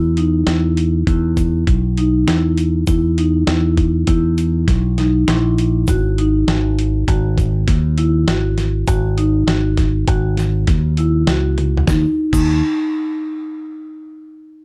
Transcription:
Already playing: fingered electric bass E2
0.17 marimba D#4, closed hi-hat
0.47 fingered electric bass E2, marimba E4, snare, closed hi-hat
0.77 closed hi-hat
1.07 fingered electric bass E2, marimba E4, kick, closed hi-hat, shaker
1.37 kick, closed hi-hat, shaker
1.67 fingered electric bass B1, kick, closed hi-hat
1.97 marimba D#4, closed hi-hat
2.27 fingered electric bass E2, marimba E4, snare, closed hi-hat, shaker
2.57 closed hi-hat, shaker
2.87 fingered electric bass E2, marimba E4, kick, closed hi-hat, shaker
3.18 marimba D#4, closed hi-hat
3.47 fingered electric bass E2, marimba E4, snare, closed hi-hat
3.77 kick, closed hi-hat
4.07 fingered electric bass E2, marimba E4, kick, closed hi-hat, shaker
4.38 closed hi-hat, shaker
4.68 fingered electric bass B1, kick, snare, closed hi-hat
4.98 marimba D#4, snare, closed hi-hat
5.28 fingered electric bass A#1, marimba E4, snare, closed hi-hat, shaker
5.58 closed hi-hat, shaker
5.87 fingered electric bass G#1, marimba F#4, kick, closed hi-hat, shaker
6.18 marimba D#4, closed hi-hat
6.47 fingered electric bass G#1, marimba F#4, snare, closed hi-hat
6.79 closed hi-hat
7.08 fingered electric bass G#1, marimba F#4, kick, closed hi-hat, shaker
7.38 kick, closed hi-hat, shaker
7.68 fingered electric bass D#2, kick, snare, closed hi-hat
7.98 marimba E4, closed hi-hat
8.27 fingered electric bass G#1, marimba F#4, snare, closed hi-hat, shaker
8.58 snare, closed hi-hat, shaker
8.87 fingered electric bass G#1, marimba F#4, kick, closed hi-hat, shaker
9.18 marimba D#4, closed hi-hat, shaker
9.47 fingered electric bass G#1, marimba F#4, snare, closed hi-hat
9.77 kick, snare, closed hi-hat, shaker
10.08 fingered electric bass G#1, marimba F#4, kick, closed hi-hat
10.37 snare, closed hi-hat, shaker
10.67 fingered electric bass D#2, kick, snare, closed hi-hat, shaker
10.97 marimba E4, closed hi-hat, shaker
11.27 fingered electric bass C#2, marimba F#4, snare, closed hi-hat, shaker
11.58 closed hi-hat, high tom
11.77 floor tom
11.87 fingered electric bass D#2, marimba D#4, kick, snare, shaker
12.33 fingered electric bass D#2, marimba D#4, kick, crash, shaker

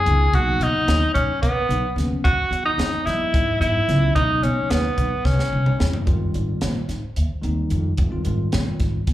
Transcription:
Already playing: tenor saxophone G#4
0.06 upright bass C#2, tine electric piano C#3 E3 G#3 B3 D#4, closed hi-hat
0.32 upright bass B1, tine electric piano C#3 F#3 A#3 B3 D#4, tenor saxophone F#4, kick, closed hi-hat
0.60 upright bass B2, tenor saxophone D#4, closed hi-hat
0.88 upright bass D#2, snare, closed hi-hat
1.14 upright bass B1, tenor saxophone C#4, kick, closed hi-hat
1.42 upright bass B2, tenor saxophone B3, kick, closed hi-hat
1.69 upright bass B1, closed hi-hat
1.96 upright bass D#2, tine electric piano C#3 F#3 A#3 B3 C#4, snare, closed hi-hat
2.10 muted upright bass stroke
2.24 upright bass E2, tenor saxophone F#4, kick, closed hi-hat
2.38 muted upright bass stroke
2.51 upright bass E2, closed hi-hat
2.65 tenor saxophone D#4
2.78 upright bass E2, snare, closed hi-hat
3.05 upright bass E2, tine electric piano E3 F#3 G#3 B3 D#5, tenor saxophone E4, snare, closed hi-hat
3.20 muted upright bass stroke
3.34 upright bass G#2, kick, closed hi-hat
3.60 upright bass G#2, tine electric piano E3 F#3 G#3 B3 D#4, tenor saxophone E4, closed hi-hat
3.75 muted upright bass stroke
3.88 upright bass C#2, tine electric piano E3 F#3 G#3 B3 C#4, snare, closed hi-hat
4.15 upright bass B1, tine electric piano C#3 F#3 G#3 B3 D#4, tenor saxophone D#4, kick, closed hi-hat
4.43 upright bass B2, tenor saxophone C#4, closed hi-hat
4.70 upright bass D#2, tenor saxophone B3, snare, closed hi-hat
4.97 upright bass B1, kick, closed hi-hat
5.25 upright bass C2, tenor saxophone C#4, kick, snare
5.39 snare
5.53 upright bass C2
5.66 mid tom
5.79 upright bass E2, tine electric piano C#3 G3 A#3 C4 E4, snare
5.93 muted upright bass stroke, floor tom
6.06 upright bass F2, tine electric piano D#3 G3 G#3 C4 F4, kick, closed hi-hat
6.21 muted upright bass stroke
6.34 upright bass G#2, tine electric piano D5, closed hi-hat
6.50 muted upright bass stroke
6.61 upright bass A#2, tine electric piano C5, snare, closed hi-hat
6.76 muted upright bass stroke
6.88 upright bass G#2, snare, closed hi-hat
7.03 muted upright bass stroke
7.16 upright bass D#2, closed hi-hat
7.31 muted upright bass stroke
7.42 upright bass D#2, tine electric piano D#3 G3 G#3 C4 D#4, closed hi-hat
7.70 upright bass F2, closed hi-hat
7.97 upright bass F2, kick, closed hi-hat
8.10 tine electric piano D#3 G3 G#3 C4 F4
8.14 muted upright bass stroke
8.24 upright bass G#2, tine electric piano D#3 G3 G#3 C4 F4, closed hi-hat
8.40 muted upright bass stroke
8.52 upright bass A#2, snare, closed hi-hat
8.67 muted upright bass stroke
8.80 upright bass G#2, kick, snare, closed hi-hat
8.96 muted upright bass stroke
9.07 upright bass D#2, kick, closed hi-hat

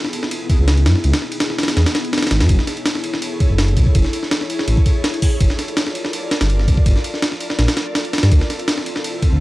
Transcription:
0.05 snare
0.13 ride
0.23 snare
0.31 ride
0.50 kick, ride
0.59 detuned saw bass C#2
0.68 snare, ride
0.77 ride
0.86 detuned saw bass F#2, snare, ride
0.95 snare
1.04 detuned saw bass C#2, ride
1.14 snare, ride
1.22 snare
1.32 ride
1.40 snare, ride
1.50 snare
1.59 snare, ride
1.63 snare, ride
1.68 snare, ride
1.77 detuned saw bass E2, snare, ride
1.86 snare, ride
1.95 snare, ride
2.05 ride
2.13 snare, ride
2.18 snare, ride
2.23 snare, ride
2.27 snare, ride
2.31 detuned saw bass G#1, snare, ride
2.41 detuned saw bass F#2, snare, ride
2.49 detuned saw bass F#1, kick, ride
2.59 snare
2.67 snare, ride
2.77 ride
2.86 snare, ride
2.95 snare
3.04 ride
3.14 snare
3.22 ride
3.40 kick, ride
3.50 detuned saw bass F#1
3.58 snare, ride
3.68 ride
3.77 detuned saw bass B1, kick, ride
3.86 kick
3.95 detuned saw bass F#1, kick, ride
4.05 snare
4.13 ride
4.23 snare
4.31 snare, ride
4.41 snare
4.50 ride
4.59 snare
4.68 detuned saw bass A1, ride
4.77 kick
4.86 kick, ride
5.04 snare, ride
5.14 ride
5.22 kick, open hi-hat
5.40 detuned saw bass G1, kick, ride
5.50 snare
5.59 snare, ride
5.68 ride
5.77 snare, ride
5.87 snare
5.95 ride
6.05 snare
6.13 ride
6.31 snare, ride
6.41 detuned saw bass G1, snare, ride
6.50 ride
6.59 snare
6.68 detuned saw bass C2, kick, ride
6.77 kick
6.86 detuned saw bass G1, kick, ride
6.96 snare
7.04 ride
7.14 snare
7.22 snare, ride
7.32 snare
7.40 ride
7.50 snare
7.58 detuned saw bass A#1, snare, ride
7.68 snare, ride
7.77 snare, ride
7.95 snare, ride
8.05 ride
8.13 snare, ride
8.18 snare, ride
8.23 detuned saw bass G2, snare, ride
8.32 detuned saw bass D2, kick, ride
8.41 snare
8.50 snare, ride
8.59 ride
8.68 snare, ride
8.78 snare
8.86 ride
8.96 snare
9.04 ride
9.22 kick, ride
9.32 detuned saw bass D2

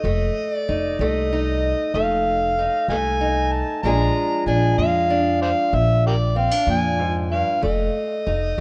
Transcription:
Already playing: harmonica D#5
0.04 upright bass F1, steel-string acoustic guitar F2 A3
0.54 harmonica D5
0.69 upright bass F1, steel-string acoustic guitar D#4
0.99 upright bass C2, steel-string acoustic guitar F2 A3, harmonica D#5
1.33 steel-string acoustic guitar D#4
1.94 upright bass F1, steel-string acoustic guitar F2 A3, harmonica F5
2.59 steel-string acoustic guitar D#4
2.88 upright bass C2, steel-string acoustic guitar F2 A3, harmonica D#5 F5 G#5
3.21 steel-string acoustic guitar D#4
3.52 harmonica A5
3.83 upright bass A#1, steel-string acoustic guitar A#2 F3 G#3 D4 G#4, harmonica A#5
4.46 upright bass A#1, steel-string acoustic guitar D4, harmonica G#5
4.78 upright bass F2, steel-string acoustic guitar A#2 G#3, harmonica F5
5.10 steel-string acoustic guitar D4
5.42 harmonica C5 D5 F5
5.73 upright bass A#1, steel-string acoustic guitar A#2, harmonica E5
6.07 harmonica G4 A#4 D5
6.36 steel-string acoustic guitar C4, harmonica F5
6.51 steel-string acoustic guitar D4
6.66 upright bass F2, steel-string acoustic guitar A#2, harmonica G#5
6.99 steel-string acoustic guitar G#2
7.32 steel-string acoustic guitar G2, harmonica F5
7.62 upright bass F1, steel-string acoustic guitar F2 A3, harmonica D#5
8.26 upright bass F1, steel-string acoustic guitar D#4

